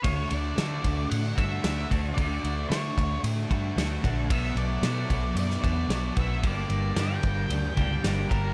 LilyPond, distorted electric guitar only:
\new Staff \with { instrumentName = "Distorted electric guitar" } { \clef bass \time 4/4 \key d \major \tempo 4 = 112 <d a d'>8 <a d'>8 <d a d'>8 <a d'>8 <d a d'>8 <a d'>8 <d a d'>8 <a d'>8 | <d a d'>8 <a d'>8 <d a d'>8 <a d'>8 <d a d'>8 <a d'>8 <d a d'>8 <a d'>8 | <b, fis b>8 <fis b>8 <b, fis b>8 <fis b>8 <b, fis b>8 <fis b>8 <b, fis b>8 <fis b>8 | <g, d g>8 <d g>8 <g, d g>8 <d g>8 <g, d g>8 <d g>8 <g, d g>8 <d g>8 | }